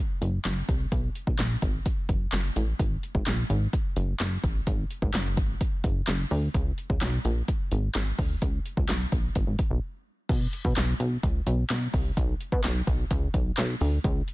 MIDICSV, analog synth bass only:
0, 0, Header, 1, 2, 480
1, 0, Start_track
1, 0, Tempo, 468750
1, 941, Time_signature, 4, 2, 24, 8
1, 14683, End_track
2, 0, Start_track
2, 0, Title_t, "Analog synth bass"
2, 0, Program_c, 0, 38
2, 220, Note_on_c, 0, 30, 97
2, 402, Note_off_c, 0, 30, 0
2, 461, Note_on_c, 0, 30, 93
2, 643, Note_off_c, 0, 30, 0
2, 704, Note_on_c, 0, 36, 92
2, 884, Note_off_c, 0, 36, 0
2, 941, Note_on_c, 0, 35, 109
2, 1122, Note_off_c, 0, 35, 0
2, 1302, Note_on_c, 0, 35, 87
2, 1393, Note_off_c, 0, 35, 0
2, 1420, Note_on_c, 0, 34, 92
2, 1602, Note_off_c, 0, 34, 0
2, 1661, Note_on_c, 0, 32, 109
2, 1843, Note_off_c, 0, 32, 0
2, 2140, Note_on_c, 0, 30, 85
2, 2322, Note_off_c, 0, 30, 0
2, 2383, Note_on_c, 0, 30, 85
2, 2564, Note_off_c, 0, 30, 0
2, 2622, Note_on_c, 0, 33, 96
2, 2803, Note_off_c, 0, 33, 0
2, 2861, Note_on_c, 0, 32, 98
2, 3043, Note_off_c, 0, 32, 0
2, 3223, Note_on_c, 0, 32, 98
2, 3313, Note_off_c, 0, 32, 0
2, 3343, Note_on_c, 0, 34, 93
2, 3524, Note_off_c, 0, 34, 0
2, 3582, Note_on_c, 0, 32, 93
2, 3763, Note_off_c, 0, 32, 0
2, 4061, Note_on_c, 0, 30, 87
2, 4242, Note_off_c, 0, 30, 0
2, 4301, Note_on_c, 0, 30, 94
2, 4483, Note_off_c, 0, 30, 0
2, 4542, Note_on_c, 0, 33, 93
2, 4723, Note_off_c, 0, 33, 0
2, 4781, Note_on_c, 0, 32, 107
2, 4962, Note_off_c, 0, 32, 0
2, 5142, Note_on_c, 0, 32, 100
2, 5233, Note_off_c, 0, 32, 0
2, 5259, Note_on_c, 0, 30, 94
2, 5502, Note_on_c, 0, 32, 94
2, 5518, Note_off_c, 0, 30, 0
2, 5683, Note_off_c, 0, 32, 0
2, 5981, Note_on_c, 0, 30, 89
2, 6163, Note_off_c, 0, 30, 0
2, 6221, Note_on_c, 0, 30, 90
2, 6403, Note_off_c, 0, 30, 0
2, 6462, Note_on_c, 0, 38, 99
2, 6643, Note_off_c, 0, 38, 0
2, 6702, Note_on_c, 0, 37, 101
2, 6883, Note_off_c, 0, 37, 0
2, 7063, Note_on_c, 0, 37, 84
2, 7153, Note_off_c, 0, 37, 0
2, 7180, Note_on_c, 0, 35, 106
2, 7362, Note_off_c, 0, 35, 0
2, 7422, Note_on_c, 0, 34, 98
2, 7603, Note_off_c, 0, 34, 0
2, 7901, Note_on_c, 0, 32, 94
2, 8083, Note_off_c, 0, 32, 0
2, 8141, Note_on_c, 0, 32, 102
2, 8323, Note_off_c, 0, 32, 0
2, 8382, Note_on_c, 0, 38, 91
2, 8564, Note_off_c, 0, 38, 0
2, 8620, Note_on_c, 0, 37, 103
2, 8802, Note_off_c, 0, 37, 0
2, 8983, Note_on_c, 0, 37, 95
2, 9073, Note_off_c, 0, 37, 0
2, 9097, Note_on_c, 0, 35, 90
2, 9280, Note_off_c, 0, 35, 0
2, 9340, Note_on_c, 0, 34, 92
2, 9522, Note_off_c, 0, 34, 0
2, 9582, Note_on_c, 0, 32, 99
2, 9673, Note_off_c, 0, 32, 0
2, 9699, Note_on_c, 0, 32, 87
2, 9791, Note_off_c, 0, 32, 0
2, 9937, Note_on_c, 0, 35, 101
2, 10030, Note_off_c, 0, 35, 0
2, 10542, Note_on_c, 0, 35, 107
2, 10723, Note_off_c, 0, 35, 0
2, 10903, Note_on_c, 0, 47, 99
2, 10993, Note_off_c, 0, 47, 0
2, 11023, Note_on_c, 0, 35, 93
2, 11204, Note_off_c, 0, 35, 0
2, 11263, Note_on_c, 0, 35, 101
2, 11444, Note_off_c, 0, 35, 0
2, 11504, Note_on_c, 0, 37, 95
2, 11684, Note_off_c, 0, 37, 0
2, 11741, Note_on_c, 0, 35, 93
2, 11922, Note_off_c, 0, 35, 0
2, 11984, Note_on_c, 0, 35, 92
2, 12164, Note_off_c, 0, 35, 0
2, 12222, Note_on_c, 0, 36, 95
2, 12403, Note_off_c, 0, 36, 0
2, 12463, Note_on_c, 0, 35, 110
2, 12644, Note_off_c, 0, 35, 0
2, 12824, Note_on_c, 0, 47, 103
2, 12914, Note_off_c, 0, 47, 0
2, 12945, Note_on_c, 0, 35, 95
2, 13125, Note_off_c, 0, 35, 0
2, 13181, Note_on_c, 0, 35, 100
2, 13362, Note_off_c, 0, 35, 0
2, 13422, Note_on_c, 0, 37, 106
2, 13603, Note_off_c, 0, 37, 0
2, 13661, Note_on_c, 0, 35, 90
2, 13842, Note_off_c, 0, 35, 0
2, 13903, Note_on_c, 0, 35, 104
2, 14084, Note_off_c, 0, 35, 0
2, 14142, Note_on_c, 0, 38, 90
2, 14323, Note_off_c, 0, 38, 0
2, 14381, Note_on_c, 0, 37, 109
2, 14562, Note_off_c, 0, 37, 0
2, 14683, End_track
0, 0, End_of_file